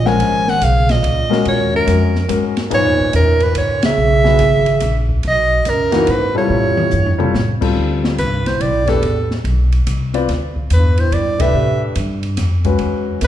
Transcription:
Already playing: upright bass A#1
0.05 bass clarinet F3, grand piano G#3 C#4 A#4 F#5, soprano saxophone G#5, snare
0.19 upright bass G#1, ride
0.47 bass clarinet D#3, soprano saxophone F#5, snare
0.61 upright bass B1, bass clarinet C#3, soprano saxophone F5, hi-hat pedal, ride
0.89 bass clarinet A#2, soprano saxophone D#5, snare, ride
1.03 upright bass C#2, ride
1.30 grand piano G#3 C#4 F#4 A#4, muted upright bass stroke, snare
1.45 upright bass D#2, bass clarinet A#2, soprano saxophone C#5, ride
1.73 bass clarinet F#2, soprano saxophone A#4
1.86 upright bass F2, grand piano G#3 C#4 F#4 A#4, hi-hat pedal, ride
2.15 snare
2.29 upright bass G#2, grand piano G#3 C#4 F#4 A#4, hi-hat pedal, ride
2.57 snare, ride
2.70 upright bass F#2, bass clarinet G#2, grand piano A#2 D#4 G#4 B4, ride
2.74 soprano saxophone C#5
2.85 upright bass E2
2.99 upright bass C#2
3.12 upright bass E2, bass clarinet F#2, soprano saxophone A#4, hi-hat pedal, ride
3.40 bass clarinet G#2, soprano saxophone B4, ride
3.55 upright bass C#2, bass clarinet G#2, soprano saxophone C#5, ride
3.83 bass clarinet C#3, soprano saxophone E5, snare, ride
3.97 upright bass B1
4.24 grand piano F#3 B3 E4 G#4, snare
4.39 upright bass G#1, hi-hat pedal, ride
4.66 ride
4.80 upright bass A#1, hi-hat pedal, ride
5.09 kick
5.23 upright bass B1, bass clarinet B2, ride
5.27 soprano saxophone D#5
5.65 upright bass C#2, bass clarinet F#2, soprano saxophone A#4, hi-hat pedal, ride
5.92 grand piano E3 A#3 D#4 F#4, snare, ride
6.07 bass clarinet G#2, upright bass G#2, soprano saxophone B4, ride
6.35 bass clarinet A2, grand piano C3 G3 F4 A4, soprano saxophone C#5
6.50 upright bass A2, mid tom
6.63 floor tom
6.77 high tom
6.91 upright bass G2, floor tom, hi-hat pedal
7.06 floor tom
7.18 grand piano G3 C4 F4 A4, mid tom
7.34 upright bass A2, snare
7.61 grand piano G3 C4 F4 A4, kick, crash
7.76 upright bass D2
8.04 snare
8.17 upright bass C2, bass clarinet G2, soprano saxophone B4, hi-hat pedal, ride
8.44 bass clarinet A2, soprano saxophone C5, snare, ride
8.57 upright bass B1, bass clarinet A2, ride
8.62 soprano saxophone D5
8.85 bass clarinet E2, grand piano A3 D4 G4 B4, soprano saxophone A4, snare, ride
9.02 upright bass A1, ride
9.31 snare
9.44 upright bass B1, ride
9.72 ride
9.87 upright bass C2, hi-hat pedal, ride
10.14 grand piano C4 F4 B4 D5, ride
10.29 upright bass D2, snare, ride
10.56 kick
10.70 upright bass E2, bass clarinet G2, soprano saxophone B4, hi-hat pedal, ride
10.97 bass clarinet A2, soprano saxophone C5, ride
11.12 upright bass G2, bass clarinet A2, soprano saxophone D5, ride
11.39 bass clarinet C3, grand piano A3 D4 G4 B4, soprano saxophone E5, kick, ride
11.53 upright bass A2
11.95 upright bass G2, hi-hat pedal, ride
12.23 ride
12.37 upright bass F2, snare, hi-hat pedal, ride
12.64 grand piano G#3 C#4 F#4 B4, kick, ride
12.78 upright bass E2, ride
13.21 upright bass D2, bass clarinet F#2, snare, hi-hat pedal, ride

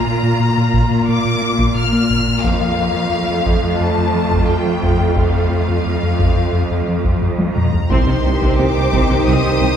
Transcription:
Already playing: cello section A#2, viola section A#3 F4, violin section A#5
0.06 analog synth bass A#2
0.23 analog synth bass A#2
0.40 analog synth bass A#2
0.58 analog synth bass A#2
0.74 analog synth bass A#2, taiko
0.91 analog synth bass A#2
1.07 analog synth bass A#2, violin section D6
1.25 analog synth bass A#2
1.42 analog synth bass A#3
1.59 analog synth bass A#2, taiko
1.75 analog synth bass A#2, violin section F6
1.92 analog synth bass A#3
2.10 analog synth bass A#2, taiko
2.28 analog synth bass A#2
2.43 analog synth bass F2, cello section F2, viola section F4, violin section F5, taiko
2.61 analog synth bass F2
2.79 analog synth bass F2
2.96 analog synth bass F2
3.13 analog synth bass F2, viola section A3
3.30 analog synth bass F2
3.46 analog synth bass F2, taiko
3.63 analog synth bass F2
3.80 analog synth bass F2, violin section A5
3.98 analog synth bass F2
4.15 analog synth bass F3
4.31 analog synth bass F2, taiko
4.48 analog synth bass F2, violin section G5
4.66 analog synth bass F3
4.83 analog synth bass F2, taiko
5.00 analog synth bass F2
5.17 analog synth bass F2, violin section F5, taiko
5.35 analog synth bass F2
5.52 analog synth bass F2
5.69 analog synth bass F2
5.86 analog synth bass F2
6.03 analog synth bass F2
6.19 analog synth bass F2, taiko
6.36 analog synth bass F2
6.53 analog synth bass F2
6.71 analog synth bass F2
6.88 analog synth bass F3
7.04 analog synth bass F2, taiko
7.22 analog synth bass F2, taiko low-mid
7.38 analog synth bass F3, taiko high
7.55 analog synth bass F2, violin section A#5, taiko mid
7.73 analog synth bass F2, taiko low
7.89 tuba C2, double bass section C2, sub bass C2, analog synth bass C2, trombone section G2 D#3, cello section C3, viola section C4 D#4, french horn section C4 D#4, violin section G4 C5 C6, taiko
8.07 analog synth bass C3, cello section C3, viola section D#3
8.24 double bass section C2, analog synth bass C2, tuba C2, cello section C3, viola section G3
8.41 analog synth bass C2, cello section C3, viola section C4, taiko
8.58 double bass section C2, analog synth bass C2, tuba C2, cello section C3, viola section D#3, violin section D6
8.76 analog synth bass C2, cello section C3, viola section G3
8.92 double bass section C2, analog synth bass C2, tuba C2, cello section C3, viola section C4, taiko
9.10 analog synth bass C2, cello section C3, viola section D#3
9.25 analog synth bass C2, tuba C2, double bass section C2, cello section C3, viola section C4, violin section D#6
9.43 analog synth bass C3, cello section C3, viola section D#3
9.61 analog synth bass C2, tuba C2, double bass section C2, cello section C3, viola section G3

